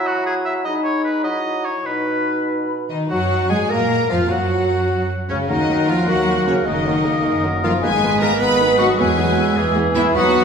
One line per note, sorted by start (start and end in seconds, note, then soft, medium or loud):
0.00 0.66 F#3 medium
0.00 0.61 E4 medium
0.00 0.65 A#5 medium
0.07 0.26 F#4 medium
0.26 0.35 G#4 medium
0.45 0.54 E5 medium
0.64 1.26 G#3 medium
0.64 1.26 D#4 soft
0.64 0.74 D#5 medium
0.64 1.24 B5 medium
0.84 1.04 C#5 medium
1.05 1.23 B4 medium
1.24 1.68 F#3 medium
1.24 1.88 E4 soft
1.24 1.67 D#5 medium
1.24 1.86 A#5 soft
1.65 1.87 C#5 medium
1.85 2.87 B2 medium
1.85 2.72 D#4 soft
1.85 2.48 B4 medium
1.85 2.87 B5 soft
2.89 3.08 D#3 soft
2.89 3.09 D#3 soft
2.89 3.11 D#4 soft
2.89 3.09 D#4 soft
2.89 2.97 D#5 medium
3.09 3.48 F#2 medium
3.09 3.50 F#3 medium
3.09 3.47 F#3 medium
3.09 3.52 F#3 medium
3.09 3.50 F#3 medium
3.09 3.47 F#4 medium
3.09 3.52 F#4 medium
3.09 3.50 F#4 medium
3.09 3.47 F#5 medium
3.09 3.50 F#5 medium
3.49 3.70 G#2 medium
3.49 3.71 G#3 medium
3.49 3.58 G#3 medium
3.49 3.70 G#3 medium
3.49 3.71 G#4 medium
3.49 3.58 G#4 medium
3.49 3.71 G#4 medium
3.49 3.70 G#5 medium
3.69 4.10 A#2 medium
3.69 4.09 A#3 medium
3.69 4.10 A#3 medium
3.69 4.09 A#4 medium
3.69 4.10 A#4 medium
3.69 4.10 A#5 medium
4.09 4.30 F2 medium
4.09 4.19 F3 medium
4.09 4.18 F3 medium
4.09 4.30 F3 medium
4.09 4.29 F4 medium
4.09 4.30 F4 medium
4.09 4.30 F5 medium
4.29 5.09 F#2 medium
4.29 5.07 F#3 medium
4.29 5.08 F#3 medium
4.29 5.07 F#4 medium
4.29 5.09 F#4 soft
4.29 5.08 F#4 medium
4.29 5.09 F#5 medium
5.29 5.37 C#2 medium
5.29 5.48 C#3 medium
5.29 5.48 C#4 medium
5.29 5.38 C#4 medium
5.29 5.47 C#5 medium
5.29 5.37 C#5 medium
5.48 6.01 D#2 medium
5.48 5.88 D#3 medium
5.48 6.09 F#3 medium
5.48 5.57 F#3 medium
5.48 5.57 A#3 medium
5.48 5.88 D#4 medium
5.48 5.87 D#4 medium
5.48 6.62 A#4 medium
5.48 5.87 D#5 medium
5.48 6.62 F#6 medium
5.68 5.76 F#3 soft
5.68 5.76 A#3 soft
5.87 6.08 F3 medium
5.87 5.96 F#3 soft
5.87 5.96 A#3 soft
5.87 6.07 F4 medium
5.87 5.97 F4 medium
5.87 6.08 F5 medium
6.07 6.60 D#2 medium
6.07 6.47 F#3 medium
6.07 6.46 F#3 medium
6.07 6.16 F#3 soft
6.07 6.67 A#3 medium
6.07 6.15 A#3 soft
6.07 6.47 F#4 medium
6.07 6.48 F#4 medium
6.07 6.46 F#5 medium
6.27 6.35 F#3 soft
6.27 6.35 A#3 soft
6.46 6.66 C#3 medium
6.46 6.55 C#3 medium
6.46 6.54 F#3 medium
6.46 6.54 A#3 soft
6.46 6.66 C#4 medium
6.46 6.55 C#5 medium
6.66 7.18 F#1 medium
6.66 6.74 D#3 medium
6.66 7.43 D#3 medium
6.66 6.87 G#3 medium
6.66 6.74 A#3 medium
6.66 7.43 D#4 medium
6.66 7.81 A#4 medium
6.66 7.43 D#5 medium
6.66 8.15 D#6 medium
6.85 6.93 D#3 soft
6.85 7.07 F#3 medium
6.85 6.93 A#3 soft
7.05 7.13 D#3 soft
7.05 7.13 A#3 soft
7.05 7.26 A#3 medium
7.25 7.76 F#1 medium
7.25 7.33 D#3 soft
7.25 7.46 G#3 medium
7.25 7.33 A#3 soft
7.44 7.52 D#3 medium
7.44 7.63 F#3 medium
7.44 7.52 A#3 medium
7.63 7.71 D#3 medium
7.63 7.71 F3 medium
7.63 7.82 F3 medium
7.63 7.72 A#3 medium
7.63 7.72 F4 medium
7.63 7.81 F4 medium
7.63 7.71 F5 medium
7.82 8.33 G#1 medium
7.82 7.91 D#3 medium
7.82 9.00 G#3 medium
7.82 8.20 G#3 medium
7.82 8.21 G#3 medium
7.82 7.91 B3 medium
7.82 8.20 G#4 medium
7.82 8.97 B4 medium
7.82 8.20 G#5 medium
8.03 8.10 D#3 medium
8.03 8.10 B3 medium
8.20 8.29 D#3 medium
8.20 8.40 A#3 medium
8.20 8.29 B3 medium
8.20 8.40 A#4 medium
8.20 8.42 A#4 medium
8.20 8.40 A#5 medium
8.39 8.92 G#1 medium
8.39 8.49 D#3 medium
8.39 8.79 B3 medium
8.39 8.49 B3 medium
8.39 8.78 B4 medium
8.39 8.78 B5 loud
8.39 8.97 D#6 medium
8.60 8.68 D#3 medium
8.60 8.68 B3 medium
8.78 8.87 D#3 medium
8.78 8.88 F#3 medium
8.78 8.99 F#3 medium
8.78 8.87 B3 medium
8.78 8.87 F#4 medium
8.78 8.98 F#4 medium
8.78 8.86 F#5 medium
8.98 9.50 E2 medium
8.98 9.07 E3 medium
8.98 9.58 F#3 medium
8.98 9.74 G#3 medium
8.98 9.07 B3 medium
8.98 9.75 G#4 medium
8.98 9.58 B4 medium
8.98 9.74 G#5 medium
8.98 9.55 E6 medium
9.18 9.26 E3 medium
9.18 9.26 B3 medium
9.38 9.45 E3 medium
9.38 9.46 B3 medium
9.57 10.08 E2 medium
9.57 9.64 E3 medium
9.57 10.15 E3 medium
9.57 9.65 B3 medium
9.57 10.14 G#4 medium
9.57 10.14 E6 medium
9.76 9.84 E3 medium
9.76 9.84 B3 medium
9.95 10.03 E3 medium
9.95 10.14 E3 medium
9.95 10.04 B3 medium
9.95 10.17 E4 medium
9.95 10.03 E4 medium
9.95 10.03 E5 loud
10.14 10.44 D#2 medium
10.14 10.44 F#3 medium
10.14 10.44 B3 medium
10.14 10.44 F#4 medium
10.14 10.44 B4 medium
10.14 10.44 F#5 loud
10.14 10.44 D#6 medium